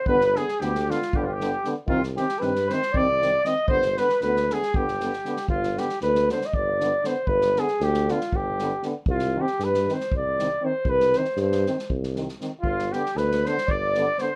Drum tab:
SD |-ooooooo--o-o-|-ooooooo--o-o-|-ooooooo-ooooo|-ooooooo--o-o-|
BD |o-------o-----|o-------o-----|o-------o-----|o-------o-----|

SD |-ooooooo--o-o-|-o-ooooo--o---|-ooooooo-oooo-|-ooooooo--o-o-|
BD |o-------o-----|o-------o-----|o-------o-----|o-------o-----|